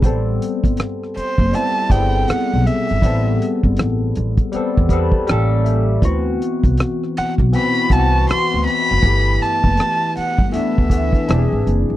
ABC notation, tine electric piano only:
X:1
M:4/4
L:1/8
Q:"Swing 16ths" 1/4=80
K:Ador
V:1 name="Tine electric piano"
z8 | z4 z b g e | z8 | z8 |]
V:2 name="Tine electric piano"
[G,B,CA]3 z [G,B,CE] [G,B,C^GA]3 | [G,B,CA]3 z [G,B,CA] [G,B,CA] [G,_B,^CA]2 | [E,B,CF]3 z [E,B,CF] [E,B,CEF]3 | [E,A,B,G]3 z [E,A,B,D] [E,A,B,A] [E,CDG^G]2 |]